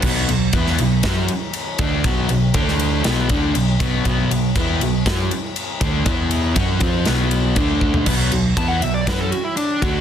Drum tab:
CC |x---------------|----------------|----------------|----------------|
RD |--x-x-x-x-x-x-x-|x-x-x-x-x-x-x-x-|x-x-x-x-x-x-x-x-|x-x-x-x-x-x-x---|
SD |-----o--o-------|-----o--o-------|--------o-------|--------o-------|
FT |----------------|----------------|----------------|---------------o|
BD |o---o---o-----o-|o---o-----o---o-|o---o---o-----o-|o---o-o-----o-o-|

CC |x---------------|
RD |--x-x-x-x-x-x-x-|
SD |--------o-------|
FT |----------------|
BD |o---o---o-----o-|